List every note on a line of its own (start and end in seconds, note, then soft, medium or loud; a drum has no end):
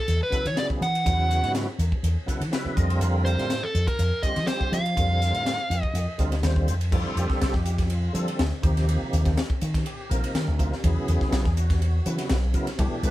0.00 0.19 A4 medium
0.08 0.19 E2 medium
0.08 hi-hat pedal medium
0.08 ride medium
0.23 0.47 B4 medium
0.30 0.47 C#3 medium
0.30 0.47 F#3 medium
0.30 0.47 B3 medium
0.30 0.48 E4 medium
0.30 0.48 A4 medium
0.30 muted slap bass stroke soft
0.30 kick medium
0.30 hi-hat pedal medium
0.30 ride medium
0.45 0.55 E3 medium
0.45 0.58 C#5 medium
0.45 ride medium
0.54 0.86 C#3 medium
0.54 0.87 F#3 medium
0.54 0.87 B3 medium
0.54 0.87 E4 medium
0.54 0.87 G#4 medium
0.54 snare medium
0.54 hi-hat pedal medium
0.54 ride medium
0.59 0.65 D5 medium
0.70 muted slap bass stroke soft
0.70 kick medium
0.81 1.03 E3 medium
0.81 1.51 F#5 medium
0.81 hi-hat pedal medium
0.81 ride medium
0.95 ride medium
1.04 1.39 E2 medium
1.04 1.67 C#3 medium
1.04 1.67 F#3 medium
1.04 1.67 B3 medium
1.04 1.68 E4 medium
1.04 1.68 F#4 medium
1.04 kick loud
1.04 hi-hat pedal medium
1.04 ride medium
1.31 hi-hat pedal medium
1.31 ride medium
1.43 1.65 G#2 medium
1.43 snare soft
1.43 ride medium
1.55 snare loud
1.55 hi-hat pedal medium
1.55 ride medium
1.78 1.90 E2 medium
1.78 hi-hat pedal medium
1.78 ride medium
1.92 kick medium
2.03 2.15 E2 medium
2.03 hi-hat pedal medium
2.03 ride medium
2.26 2.43 C#3 medium
2.26 2.43 F#3 medium
2.26 2.43 B3 medium
2.26 2.43 E4 medium
2.26 2.44 A4 medium
2.26 2.50 F#5 medium
2.26 muted slap bass stroke soft
2.26 kick medium
2.26 hi-hat pedal medium
2.26 ride medium
2.41 2.51 E3 medium
2.41 ride medium
2.50 2.76 C#3 medium
2.50 2.76 F#3 medium
2.50 2.76 B3 medium
2.50 2.76 E4 medium
2.50 2.77 B4 medium
2.50 2.74 E5 medium
2.50 snare loud
2.50 hi-hat pedal medium
2.50 ride medium
2.65 muted slap bass stroke soft
2.75 2.99 F2 medium
2.75 3.54 D3 medium
2.75 3.54 G3 medium
2.75 3.55 C4 medium
2.75 3.55 F4 medium
2.75 3.55 A#4 medium
2.75 2.99 D#5 medium
2.75 kick medium
2.75 hi-hat pedal medium
2.75 ride medium
2.90 ride medium
3.01 3.34 F2 medium
3.01 hi-hat pedal medium
3.01 ride medium
3.25 3.64 C5 medium
3.25 hi-hat pedal medium
3.25 ride medium
3.38 3.60 A2 medium
3.38 snare soft
3.38 ride medium
3.50 snare medium
3.50 hi-hat pedal medium
3.50 ride medium
3.63 3.88 A4 medium
3.74 3.86 F2 medium
3.74 hi-hat pedal medium
3.74 ride medium
3.88 4.21 A#4 medium
3.88 kick medium
3.88 ride medium
3.99 4.10 F2 medium
3.99 hi-hat pedal medium
3.99 ride medium
4.23 4.39 D3 medium
4.23 4.39 G3 medium
4.23 4.40 C4 medium
4.23 4.40 F4 medium
4.23 4.40 G4 medium
4.23 4.47 D#5 medium
4.23 muted slap bass stroke soft
4.23 kick medium
4.23 hi-hat pedal medium
4.23 ride medium
4.36 4.47 F3 medium
4.36 snare soft
4.36 ride medium
4.47 4.78 D3 medium
4.47 4.79 G3 medium
4.47 4.79 C4 medium
4.47 4.79 F4 medium
4.47 4.80 G4 medium
4.47 4.73 C5 medium
4.47 snare medium
4.47 hi-hat pedal medium
4.47 ride medium
4.61 muted slap bass stroke soft
4.61 kick medium
4.72 4.94 F3 medium
4.72 5.83 F5 medium
4.72 snare soft
4.72 hi-hat pedal medium
4.72 ride medium
4.86 ride medium
4.95 5.31 F2 medium
4.95 5.58 D3 medium
4.95 5.59 G3 medium
4.95 5.58 C4 medium
4.95 5.59 F4 medium
4.95 5.59 A#4 medium
4.95 kick loud
4.95 hi-hat pedal medium
4.95 ride medium
5.22 hi-hat pedal medium
5.22 ride medium
5.34 5.56 A2 medium
5.34 ride medium
5.46 snare medium
5.46 hi-hat pedal medium
5.46 ride medium
5.70 5.82 F2 medium
5.70 hi-hat pedal medium
5.70 ride medium
5.83 6.40 D#5 medium
5.83 kick medium
5.94 6.05 F2 medium
5.94 hi-hat pedal medium
5.94 ride medium
6.18 6.41 D2 medium
6.18 6.35 D3 medium
6.18 6.35 G3 medium
6.18 6.35 C4 medium
6.18 6.35 F4 medium
6.18 6.36 A#4 medium
6.18 kick medium
6.18 hi-hat pedal medium
6.18 ride medium
6.32 snare soft
6.32 ride medium
6.42 6.65 D#2 medium
6.42 6.74 D3 medium
6.42 6.74 G3 medium
6.42 6.74 C4 medium
6.42 6.75 F4 medium
6.42 6.75 C5 medium
6.42 snare loud
6.42 hi-hat pedal medium
6.42 ride medium
6.56 kick medium
6.68 6.90 F2 medium
6.68 hi-hat pedal medium
6.68 ride medium
6.81 ride medium
6.91 7.04 F2 medium
6.91 7.54 D3 medium
6.91 7.54 G3 medium
6.91 7.55 C4 medium
6.91 7.17 E4 medium
6.91 7.55 F4 medium
6.91 7.55 A4 medium
6.91 kick loud
6.91 crash medium
7.16 7.28 F2 medium
7.16 7.86 G4 loud
7.16 hi-hat pedal medium
7.16 ride medium
7.30 muted slap bass stroke soft
7.30 kick medium
7.30 snare soft
7.41 7.53 C2 medium
7.41 snare loud
7.41 ride medium
7.54 8.08 F2 medium
7.54 kick medium
7.54 snare soft
7.66 hi-hat pedal medium
7.66 ride medium
7.78 kick medium
7.78 snare soft
7.78 ride medium
7.90 8.13 F4 medium
7.90 ride medium
8.13 8.45 D3 medium
8.13 8.26 F3 loud
8.13 8.45 G3 medium
8.13 8.45 C4 medium
8.13 8.45 F4 medium
8.13 8.46 A4 medium
8.13 hi-hat pedal medium
8.13 ride medium
8.28 ride medium
8.39 8.50 D2 medium
8.39 snare loud
8.39 ride medium
8.62 8.97 D#2 medium
8.62 9.41 C3 medium
8.62 9.41 F3 medium
8.62 9.41 A#3 medium
8.62 9.41 D#4 medium
8.62 9.42 G4 medium
8.62 kick loud
8.62 hi-hat pedal medium
8.62 ride medium
8.77 snare soft
8.77 ride medium
8.89 ride medium
9.01 muted slap bass stroke soft
9.13 9.24 D#2 medium
9.13 hi-hat pedal medium
9.13 ride medium
9.25 9.36 D#2 medium
9.25 kick medium
9.25 snare soft
9.25 ride medium
9.37 snare loud
9.37 ride medium
9.50 muted slap bass stroke soft
9.50 kick medium
9.61 9.83 D#3 medium
9.61 hi-hat pedal medium
9.61 ride medium
9.74 kick medium
9.74 snare soft
9.74 ride medium
9.86 10.10 G4 medium
9.86 ride medium
10.09 10.22 A#1 medium
10.09 10.41 C3 medium
10.09 10.41 F3 medium
10.09 10.41 A#3 medium
10.09 10.41 D#4 medium
10.09 10.79 A#4 medium
10.09 hi-hat pedal medium
10.09 ride medium
10.24 muted slap bass stroke soft
10.24 ride medium
10.35 10.46 D#3 medium
10.35 snare medium
10.35 ride medium
10.47 10.69 D2 loud
10.58 10.74 C3 medium
10.58 10.74 F3 medium
10.58 10.75 A#3 medium
10.58 10.75 D#4 medium
10.58 10.75 F4 medium
10.58 kick medium
10.58 hi-hat pedal medium
10.58 ride medium
10.72 muted slap bass stroke soft
10.72 snare soft
10.83 10.95 E2 medium
10.83 11.45 C#3 medium
10.83 11.46 F#3 medium
10.83 11.46 B3 medium
10.83 11.46 E4 medium
10.83 11.53 G#4 medium
10.83 kick loud
10.83 ride medium
11.08 11.19 E2 medium
11.08 hi-hat pedal medium
11.08 ride medium
11.21 muted slap bass stroke soft
11.21 kick medium
11.21 snare soft
11.32 11.43 B1 medium
11.32 snare loud
11.32 ride medium
11.45 11.99 E2 medium
11.45 kick medium
11.45 snare soft
11.57 12.06 F#4 medium
11.57 hi-hat pedal medium
11.57 ride medium
11.70 kick medium
11.70 snare soft
11.70 ride medium
11.82 ride medium
12.05 12.36 C#3 medium
12.05 12.17 E3 loud
12.05 12.36 F#3 medium
12.05 12.37 B3 medium
12.05 12.37 E4 medium
12.05 12.37 F#4 medium
12.05 hi-hat pedal medium
12.05 ride medium
12.18 snare soft
12.18 ride medium
12.29 12.52 B1 medium
12.29 snare loud
12.29 ride medium
12.53 12.69 C#3 medium
12.53 12.70 F#3 medium
12.53 12.70 B3 medium
12.53 12.70 E4 medium
12.53 12.70 A#4 medium
12.53 kick medium
12.53 hi-hat pedal medium
12.53 ride medium
12.67 snare soft
12.67 ride medium
12.78 12.90 C2 loud
12.78 13.11 B2 medium
12.78 13.11 E3 medium
12.78 13.11 A3 medium
12.78 13.11 D4 medium
12.78 13.11 G4 medium
12.78 kick loud
12.78 ride medium
12.92 muted slap bass stroke soft
13.03 13.11 C2 medium
13.03 13.11 B4 loud
13.03 hi-hat pedal medium
13.03 ride medium